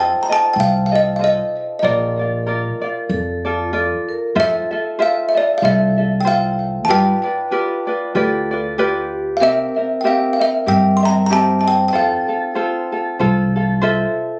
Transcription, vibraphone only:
0.00 1.90 C5 loud
1.83 3.13 A#4 medium
3.10 3.47 A4 medium
3.46 3.74 F4 medium
3.73 4.10 A4 medium
4.09 4.34 A#4 medium
4.35 6.96 A4 medium
6.88 8.18 B4 medium
8.16 8.80 A4 medium
8.78 9.43 G4 medium
9.40 11.26 A#4 medium
11.31 11.96 C5 medium
11.93 12.52 A4 medium
12.57 13.87 F4 medium
13.83 14.39 A4 medium

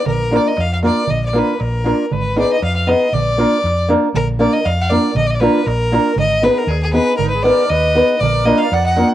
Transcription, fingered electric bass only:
0.07 0.37 A#1 medium
0.58 0.88 F2 medium
1.10 1.40 A#1 medium
1.60 1.91 A#1 medium
2.12 2.42 G#1 medium
2.62 2.93 F2 medium
3.13 3.43 A#1 medium
3.64 3.94 F2 medium
4.14 4.45 A#1 medium
4.66 4.96 F2 medium
5.15 5.46 A#1 medium
5.66 5.97 A#1 loud
6.16 6.47 G#1 medium
6.67 6.98 D#2 medium
7.19 7.49 G#1 medium
7.70 8.00 D#2 medium
8.21 8.51 A#1 medium
8.72 9.02 F2 medium

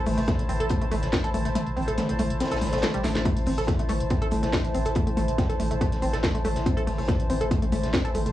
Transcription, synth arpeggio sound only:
0.06 0.16 A3 medium
0.18 0.21 A3 medium
0.28 0.31 A3 loud
0.49 0.53 C4 medium
0.60 0.66 A4 loud
0.70 0.80 A3 medium
0.81 0.85 A3 medium
0.92 0.95 A3 loud
1.13 1.17 C4 medium
1.24 1.30 A4 loud
1.34 1.43 A3 medium
1.45 1.49 A3 medium
1.55 1.59 A3 loud
1.77 1.80 C4 medium
1.88 1.93 A4 loud
1.98 2.07 A3 medium
2.09 2.12 A3 medium
2.19 2.23 A3 loud
2.40 2.44 C4 medium
2.52 2.57 A4 loud
2.73 2.79 A3 medium
2.83 2.92 A3 loud
2.94 3.03 G3 loud
3.04 3.14 A3 medium
3.15 3.21 A3 medium
3.26 3.29 A3 loud
3.47 3.51 C4 medium
3.58 3.64 A4 loud
3.68 3.77 A3 medium
3.79 3.83 A3 medium
3.89 3.93 A3 loud
4.11 4.14 C4 medium
4.22 4.27 A4 loud
4.32 4.41 A3 medium
4.43 4.46 A3 medium
4.53 4.57 A3 loud
4.74 4.78 C4 medium
4.86 4.91 A4 loud
4.96 5.05 A3 medium
5.07 5.10 A3 medium
5.17 5.21 A3 loud
5.38 5.42 C4 medium
5.49 5.55 A4 loud
5.60 5.69 A3 medium
5.71 5.74 A3 medium
5.81 5.85 A3 loud
6.02 6.06 C4 medium
6.13 6.19 A4 loud
6.23 6.33 A3 medium
6.34 6.38 A3 medium
6.45 6.48 A3 loud
6.66 6.70 C4 medium
6.77 6.83 A4 loud
6.87 6.96 A3 medium
6.98 7.02 A3 medium
7.08 7.12 A3 loud
7.30 7.33 C4 medium
7.41 7.47 A4 loud
7.51 7.60 A3 medium
7.62 7.66 A3 medium
7.72 7.76 A3 loud
7.94 7.97 C4 medium
8.05 8.10 A4 loud
8.15 8.24 A3 medium
8.26 8.29 A3 medium

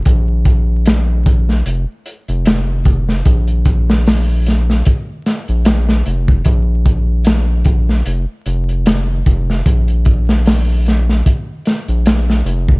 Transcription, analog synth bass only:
0.06 1.63 A#1 loud
1.66 1.85 F1 medium
2.29 3.23 F1 loud
3.26 4.83 A#1 loud
5.49 6.03 A#1 loud
6.07 6.42 F1 loud
6.46 8.02 A#1 loud
8.06 8.26 F1 loud
8.46 9.23 F1 loud
9.27 9.62 F1 loud
9.66 11.22 A#1 loud
11.89 12.43 A#1 medium
12.45 12.80 F1 loud

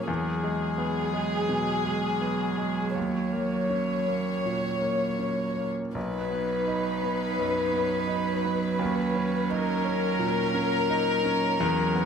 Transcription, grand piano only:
0.00 0.10 A#2 soft
0.00 0.10 A#3 soft
0.00 0.11 C#4 soft
0.07 1.45 E2 medium
0.43 1.00 G#3 soft
0.78 1.35 B3 soft
1.14 1.71 G#3 soft
1.49 2.07 B2 soft
1.85 2.44 G#3 soft
2.21 2.81 B3 soft
2.57 2.95 G#3 soft
2.95 4.41 D#2 soft
3.33 3.93 A#3 soft
3.70 4.30 C#4 soft
4.08 4.68 A#3 soft
4.46 5.05 A#2 soft
4.82 5.42 A#3 soft
5.19 5.80 C#4 soft
5.57 5.95 A#3 soft
5.95 7.35 B1 medium
6.30 6.89 B3 soft
6.67 7.25 D#4 soft
7.03 7.60 B3 soft
7.39 7.95 F#2 soft
7.73 8.30 B3 soft
8.08 8.65 D#4 soft
8.45 8.80 B3 soft
8.79 10.15 D#2 medium
9.15 9.71 C#4 medium
9.50 10.06 D#4 medium
9.84 10.41 C#4 medium
10.19 10.76 A#2 medium
10.54 11.11 C#4 medium
10.89 11.46 D#4 medium
11.25 11.60 C#4 medium
11.60 12.05 E2 medium
11.95 12.05 B3 medium

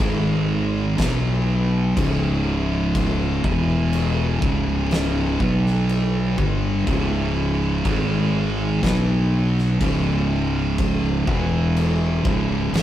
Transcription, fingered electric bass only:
0.00 0.94 G#1 loud
0.98 1.93 B1 loud
1.97 3.40 C#1 loud
3.44 4.38 E1 loud
4.42 5.36 C#1 medium
5.40 6.34 B1 loud
6.38 6.84 G1 loud
6.87 7.81 C#1 loud
7.85 8.79 G#1 loud
8.83 9.77 B1 loud
9.80 11.23 C#1 loud
11.27 12.21 E1 loud
12.25 12.70 C#1 loud
12.73 12.83 G#1 loud

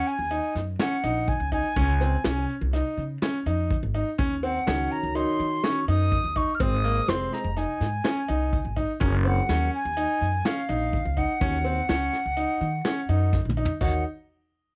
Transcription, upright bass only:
0.19 0.38 D#2 medium
0.55 0.74 F#2 medium
1.04 1.32 A#1 medium
1.40 1.59 C#2 medium
1.76 2.15 C#2 loud
2.25 2.44 C2 medium
2.61 2.80 C2 medium
2.98 3.17 C#3 medium
3.46 3.75 F2 medium
3.83 4.02 G#1 medium
4.19 4.57 D#2 medium
4.67 4.86 C#2 medium
5.03 5.22 C#2 medium
5.40 5.59 D#3 medium
5.88 6.17 F#2 medium
6.24 6.43 D#2 medium
6.60 6.98 G#1 loud
7.08 7.27 F1 medium
7.44 7.63 F1 medium
7.81 8.00 G#2 medium
8.29 8.58 C2 medium
8.65 8.84 G#1 medium
9.01 9.39 F#1 loud
9.49 9.68 D#2 medium
9.85 10.04 D#2 medium
10.21 10.40 F#2 medium
10.69 10.98 A#1 medium
11.05 11.24 C#2 medium
11.41 11.79 D#2 loud
11.89 12.08 C#2 medium
12.26 12.44 C#2 medium
12.61 12.80 D#3 medium
13.09 13.37 F#2 medium
13.45 13.64 A#1 medium
13.81 14.03 D#2 medium

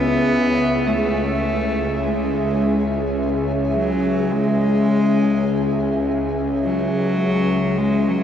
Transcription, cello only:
0.00 0.88 B3 loud
0.87 2.05 A3 medium
2.04 3.17 G#3 medium
3.73 4.33 F#3 medium
4.32 6.05 G#3 loud
6.64 7.80 F#3 loud
7.78 8.10 G#3 loud
8.08 8.23 F#3 medium

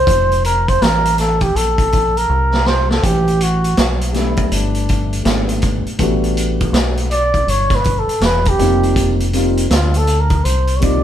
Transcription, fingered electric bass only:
0.07 0.77 F1 loud
0.82 1.52 A1 loud
1.55 2.26 A#1 medium
2.29 3.00 C2 medium
3.03 3.74 A1 loud
3.78 4.48 B1 medium
4.52 5.22 G1 medium
5.25 5.83 G#1 loud
5.86 muted fingered electric bass stroke medium
5.99 6.70 A1 loud
6.73 7.44 B1 loud
7.47 8.05 G1 medium
8.20 8.56 E1 medium
8.59 9.66 F1 loud
9.70 10.40 D2 loud
10.45 11.04 C2 medium

